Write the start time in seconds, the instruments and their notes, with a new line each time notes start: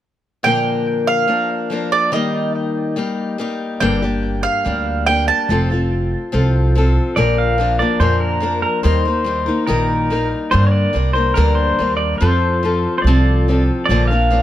0.43 steel-string acoustic guitar A#2 D3 F3 A#3 D4, mandolin G5
0.48 steel-string acoustic guitar A#4
1.07 mandolin F5
1.27 steel-string acoustic guitar F3 A#3 D4 A#4
1.70 steel-string acoustic guitar F3 A#3 D4 A#4
1.92 mandolin D5
2.12 steel-string acoustic guitar D#3 G3 A#3 D#4, mandolin D#5
2.16 steel-string acoustic guitar G4
2.96 steel-string acoustic guitar G3 A#3 D#4 G4
3.38 steel-string acoustic guitar G3 A#3 D#4 G4
3.80 upright bass G1, steel-string acoustic guitar G2 D3 G3 A#3 D4 G4, mandolin G5
4.02 steel-string acoustic guitar G3 A#3 D4 G4
4.43 mandolin F5
4.65 upright bass D2, steel-string acoustic guitar G3 A#3 D4 G4
5.07 steel-string acoustic guitar G3 A#3 D4 G4, mandolin G5
5.28 mandolin A5
5.49 upright bass F1, steel-string acoustic guitar F3 C4 F4 A4
5.70 steel-string acoustic guitar C4 F4 A4
6.32 upright bass C2, steel-string acoustic guitar F3 C4 F4 A4
6.75 steel-string acoustic guitar F3 C4 F4 A4
7.16 upright bass A#1, steel-string acoustic guitar A#2 D3 F3 A#3 D4 A#4, pedal steel guitar D5
7.38 pedal steel guitar F5
7.58 steel-string acoustic guitar F3 A#3 D4 A#4
7.79 steel-string acoustic guitar F3 A#3 D4 A#4, pedal steel guitar D5
8.00 upright bass F2, steel-string acoustic guitar A#2 D3 F3 A#3 D4 A#4, pedal steel guitar C5
8.20 pedal steel guitar A#4
8.40 steel-string acoustic guitar F3 A#3 D4 A#4
8.62 pedal steel guitar A#4
8.83 upright bass D#2, steel-string acoustic guitar D#3 G3 A#3 D#4 A#4, pedal steel guitar C5
9.05 steel-string acoustic guitar A#3 D#4 A#4
9.24 steel-string acoustic guitar G3 A#3 D#4 A#4
9.46 steel-string acoustic guitar A#3 D#4 A#4
9.67 upright bass A#1, steel-string acoustic guitar D#3 G3 A#3 D#4 A#4, pedal steel guitar A#4
10.10 steel-string acoustic guitar G3 A#3 D#4 A#4
10.51 steel-string acoustic guitar G2 D3 G3 A#3 D4 A#4, upright bass G2, pedal steel guitar C5
10.67 pedal steel guitar C#5
10.71 pedal steel guitar D5
10.93 upright bass C2, steel-string acoustic guitar G3 A#3 D4 A#4
11.13 steel-string acoustic guitar A#3 D4 A#4, pedal steel guitar C5
11.18 steel-string acoustic guitar G3
11.34 upright bass D2, steel-string acoustic guitar G2 D3 G3 A#3 D4 A#4, pedal steel guitar A#4
11.55 pedal steel guitar C5
11.79 upright bass D#2, steel-string acoustic guitar G3 A#3 D4 A#4
11.97 pedal steel guitar D5
12.18 upright bass F2, steel-string acoustic guitar F3 C4 A4, pedal steel guitar C5
12.22 steel-string acoustic guitar F4
12.63 steel-string acoustic guitar F3 C4 F4 A4
12.98 pedal steel guitar C5 D5
13.04 upright bass C2, steel-string acoustic guitar F3 C4 F4 A4
13.48 steel-string acoustic guitar F3 C4 F4 A4
13.86 upright bass A#1, pedal steel guitar D5
13.90 steel-string acoustic guitar A#2 D3 F3 A#3 D4 A#4
14.07 steel-string acoustic guitar D4 A#4, pedal steel guitar F5
14.13 steel-string acoustic guitar F3 A#3
14.31 steel-string acoustic guitar F3 A#3 D4 A#4